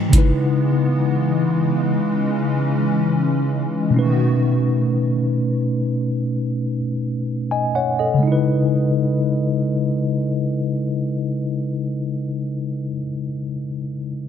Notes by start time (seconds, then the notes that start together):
Already playing: G#3 A4 C5
0.09 C#3 E3 G#3 B3, kick
0.13 D#4 E4, closed hi-hat
0.18 B4
2.03 C#4
3.90 B2 A3
3.94 D#3 A3 B3 C#4 D#4 F#4
3.99 B4
7.51 D#5 G#5
7.75 C#5 F#5
7.99 A4 D#5
8.14 C#3
8.18 G#3
8.23 D#4
8.27 E4
8.32 B4